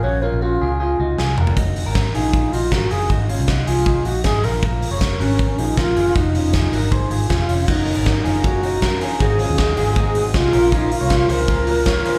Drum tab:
CC |----------------|----------------|----------------|----------------|
HH |----------------|x-o-x-o-x-o-x-o-|x-o-x-o-x-o-x-o-|x-o-x-o-x-o---o-|
SD |------------o---|----o-------o---|----o-------o---|----o-------o---|
T2 |--------------o-|----------------|----------------|----------------|
FT |---------------o|----------------|----------------|----------------|
BD |----------------|o---o---o---o---|o---o---o---o---|o---o---o---o---|

CC |----------------|x---------------|----------------|----------------|
HH |x-o-x-o-x-o-x-o-|--o-x-o-x-o-x-o-|x-o-x-o-x-o-x-o-|x-o-x-o-x-o-x-o-|
SD |----o-------o---|----o-------o---|----o-------o---|----o-------o---|
T2 |----------------|----------------|----------------|----------------|
FT |----------------|----------------|----------------|----------------|
BD |o---o---o---o---|o---o---o---o---|o---o---o---o---|o---o---o---o---|